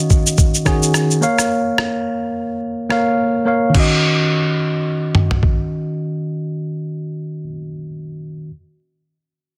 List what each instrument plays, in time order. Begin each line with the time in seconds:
Already playing: tine electric piano D#3 C#4 F#4 D#5
0.10 kick, shaker
0.27 shaker
0.38 kick, shaker
0.54 shaker
0.65 tine electric piano D#3 C#4 F#4 G#4, kick, cross-stick, shaker
0.83 shaker
0.94 cross-stick, shaker
1.11 shaker
1.21 tine electric piano A#3 A#4 C#5 F5, shaker
1.39 cross-stick, shaker
1.78 cross-stick
2.89 tine electric piano A#3 A#4 C#5 F5, cross-stick
3.45 tine electric piano A#3 A#4 C#5 F5
3.70 tine electric piano D#3 C#4
3.75 tine electric piano F#4, kick, crash
3.80 tine electric piano D#5
5.15 mid tom
5.31 floor tom
5.43 kick